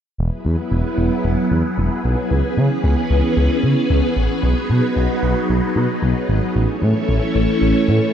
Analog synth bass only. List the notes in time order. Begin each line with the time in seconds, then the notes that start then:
0.18 E1
0.45 E2
0.71 E1
0.98 E1
1.25 E1
1.51 E2
1.78 E1
2.04 B1
2.31 C#2
2.57 C#3
2.84 C#2
3.10 C#2
3.37 C#2
3.63 C#3
3.90 C#2
4.17 A1
4.43 B1
4.70 B2
4.96 B1
5.23 B1
5.49 B1
5.76 B2
6.02 B1
6.29 G#1
6.55 A1
6.82 A2
7.09 A1
7.35 A1
7.62 A1
7.88 A2